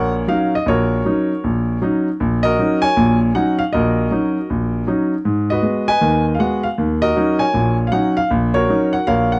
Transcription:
Already playing: A#1 A#2 F#4 A#4 C#5 F#5
0.28 F#3 C#4 D#4 F5
0.55 D#5
0.66 A#1 F#4 A#4 C#5
1.05 F#3 C#4 D#4
1.44 A#1
1.82 F#3 C#4 D#4
2.20 A#1
2.43 F#4 A#4 D#5
2.59 F#3 C#4 D#4
2.82 C#5 G#5
2.97 A#1 A#2
3.35 F#3 C#4 D#4 F#5
3.59 F5
3.73 A#1 F#4 A#4 D#5
4.11 F#3 C#4 D#4
4.50 A#1
4.87 F#3 C#4 D#4
5.25 G#2
5.50 F#4 B4 D#5
5.62 G#3 B3 F#4
5.88 B4 D#5 G#5
6.01 D#2 D#3
6.34 F5
6.39 G#3 B3 F#4 F#5
6.63 F5
6.78 D#2
7.02 F#4 A#4 D#5
7.16 F#3 C#4 D#4
7.39 C#5 G#5
7.54 A#1 A#2
7.87 F5
7.92 F#3 C#4 D#4 F#5
8.17 F5
8.31 A#1
8.54 F#4 A#4 C#5
8.69 F#3 C#4 D#4
8.93 F#5
9.07 A#1 A#4 C#5 F5
9.32 F#5

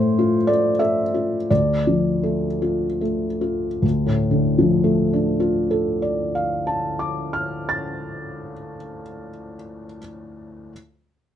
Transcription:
Already playing: A2 A3 C5
0.19 F4
0.47 A3 D5
0.79 A4 E5
1.14 F4
1.50 D2 D5
1.87 F3
2.23 A3
2.62 F4
3.01 A3
3.41 F4
3.82 D2
4.06 A2
4.31 D3
4.58 F3
4.84 A3
5.13 D4
5.40 F4
5.71 A4
6.02 D5
6.35 F5
6.67 A5
6.99 D6
7.33 F6
7.69 A6

